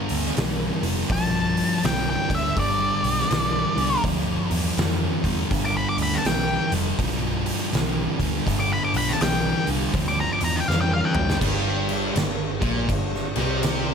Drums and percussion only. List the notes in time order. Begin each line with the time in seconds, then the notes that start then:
0.09 open hi-hat
0.24 snare
0.37 snare, open hi-hat
0.83 open hi-hat
1.10 kick, open hi-hat
1.57 open hi-hat
1.83 snare, open hi-hat
2.30 kick, open hi-hat
2.57 kick, open hi-hat
3.04 open hi-hat
3.19 snare
3.31 snare, open hi-hat
3.78 open hi-hat
4.04 kick, open hi-hat
4.51 open hi-hat
4.77 snare, open hi-hat
5.24 kick, open hi-hat
5.51 kick, open hi-hat
5.98 open hi-hat
6.13 snare
6.25 snare, open hi-hat
6.72 open hi-hat
6.99 kick, open hi-hat
7.46 open hi-hat
7.73 snare, open hi-hat
8.20 kick, open hi-hat
8.47 kick, open hi-hat
8.94 open hi-hat
9.09 snare
9.21 snare, open hi-hat
9.67 open hi-hat
9.94 kick, open hi-hat
10.41 open hi-hat
10.70 snare
11.15 mid tom
11.30 snare
11.41 kick, crash
11.89 crash
12.16 snare, crash
12.62 kick, crash
12.89 kick, crash
13.15 snare
13.36 crash
13.63 snare, crash